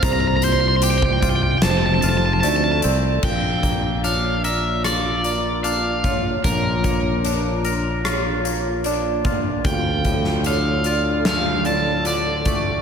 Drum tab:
CC |----------------|x---------------|----------------|----------------|
HH |x-x-x-x-x-x-x-x-|--x-x-x-x-x-x-x-|x-x-x-x-x-x-x-x-|x-x-x-x-x-x-x-x-|
SD |--------o-------|--------r-------|--------r-------|---o----o-------|
BD |o----oo---------|o-o-----------o-|o-o-----------o-|o-o-----------o-|